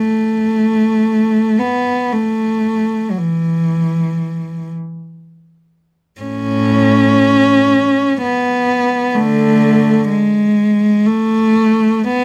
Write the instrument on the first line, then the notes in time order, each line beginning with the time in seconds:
cello
Already playing: A3
1.58 B3
2.13 A3
3.11 F#3
3.17 E3
6.21 A2 C#4
8.22 B3
9.15 D3 A3
10.10 G#3
11.06 A3
12.08 B3